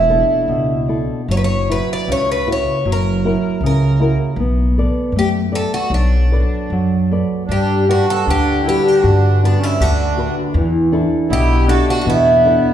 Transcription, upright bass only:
0.00 0.21 E1 loud
0.48 1.00 C#2 medium
1.28 1.80 F#1 medium
2.08 2.58 C#2 medium
2.85 3.35 F#1 medium
3.61 4.10 C#2 medium
4.36 4.86 B1 loud
5.12 5.63 F#2 medium
5.90 6.42 B1 loud
6.70 7.21 F#2 medium
7.49 7.99 G2 medium
8.27 8.77 D2 medium
9.04 9.53 G2 loud
9.80 10.29 D2 medium
10.54 11.03 E2 loud
11.30 11.80 B1 medium
12.06 12.58 E2 loud

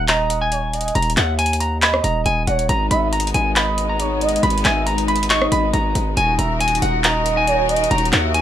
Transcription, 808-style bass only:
0.00 0.91 D#1 loud
0.95 1.16 D#1 loud
1.17 2.00 D#2 loud
2.04 2.25 D#1 loud
2.26 2.47 D#1 loud
2.47 2.68 D#1 loud
2.69 2.90 G#1 loud
2.91 3.33 G#1 loud
3.34 4.39 G#1 loud
4.43 4.64 G#1 loud
4.65 5.48 G#1 loud
5.52 5.73 G#1 loud
5.74 5.94 G#1 loud
5.95 6.16 G#1 loud
6.17 6.38 D#1 loud
6.39 6.80 D#1 loud
6.82 7.87 D#1 loud
7.91 8.12 D#1 loud
8.13 8.41 D#2 loud

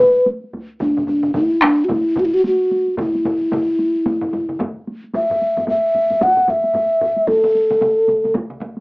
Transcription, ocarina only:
0.00 0.27 B4 medium
0.81 1.06 D4 medium
1.07 1.33 D4 medium
1.34 1.63 E4 medium
1.62 1.86 D4 medium
1.84 1.92 F#4 medium
1.90 2.21 E4 medium
2.19 2.26 F#4 medium
2.25 2.35 E4 medium
2.34 2.45 F#4 medium
2.46 2.95 F#4 medium
3.00 4.57 E4 medium
5.15 5.65 E5 medium
5.69 6.24 E5 medium
6.23 6.52 F#5 medium
6.50 7.29 E5 medium
7.28 8.34 A4 medium

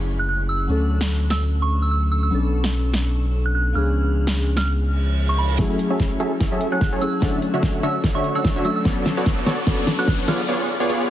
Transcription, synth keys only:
0.00 0.66 F#3 medium
0.00 0.66 A3 medium
0.00 0.67 C#4 medium
0.00 0.68 E4 medium
0.00 0.68 G#4 medium
0.67 2.29 F#3 medium
0.67 2.30 A3 medium
0.67 2.30 C#4 medium
0.67 2.31 D4 medium
0.71 2.31 A4 medium
2.30 3.72 F#3 medium
2.30 3.73 B3 medium
2.30 3.73 C#4 medium
2.30 3.74 D4 medium
2.30 3.74 A4 medium
3.73 5.56 F3 medium
3.73 5.56 B3 medium
3.73 5.57 C#4 medium
3.73 5.57 D4 medium
3.77 5.58 G#4 medium
5.57 6.99 F#3 medium
5.57 6.99 A3 medium
5.57 7.00 C#4 medium
5.57 7.00 E4 medium
5.57 7.01 G#4 loud
7.01 7.19 F#3 medium
7.01 7.20 A3 medium
7.01 7.20 C#4 medium
7.01 7.20 E4 medium
7.01 7.21 G#4 medium
7.20 8.62 F#3 medium
7.20 8.62 A3 medium
7.20 8.63 C#4 medium
7.20 8.63 D4 medium
7.24 8.64 A4 medium
8.64 8.82 F#3 medium
8.64 8.83 A3 medium
8.64 8.83 C#4 medium
8.64 8.84 D4 medium
8.64 8.84 A4 medium
8.84 9.64 F#3 medium
8.84 9.65 B3 medium
8.84 9.66 C#4 medium
8.84 9.66 D4 medium
8.84 9.67 A4 medium
9.65 10.46 F#3 medium
9.65 10.47 B3 medium
9.65 10.47 C#4 medium
9.65 10.48 D4 medium
9.69 10.48 A4 loud

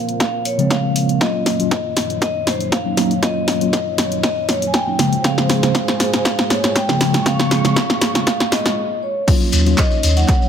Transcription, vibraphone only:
0.00 0.16 F5 loud
0.20 0.44 F5 loud
0.46 0.69 C#5 medium
0.71 1.23 F5 loud
1.21 2.21 D#5 loud
2.22 2.48 D#5 loud
2.47 2.73 C5 medium
2.73 3.24 F5 loud
3.23 4.23 D#5 loud
4.24 4.50 D#5 medium
4.49 4.68 C#5 medium
4.67 4.74 G#5 medium
4.74 5.26 G5 loud
5.24 6.24 F5 loud
6.25 6.51 F5 loud
6.50 6.76 C#5 medium
6.76 7.28 G5 loud
7.26 8.26 F5 loud
8.27 8.53 F5 medium
8.52 8.99 D#5 loud
9.03 9.26 C#5 medium
9.78 10.18 D#5 loud
10.17 10.49 F#5 loud

